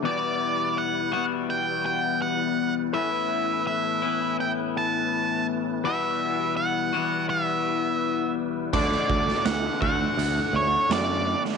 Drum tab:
CC |----------------|----------------|----------------|x---------------|
HH |----------------|----------------|----------------|----x---x---x---|
SD |----------------|----------------|----------------|-o-oo-------o--o|
BD |----------------|----------------|----------------|o-o---o---------|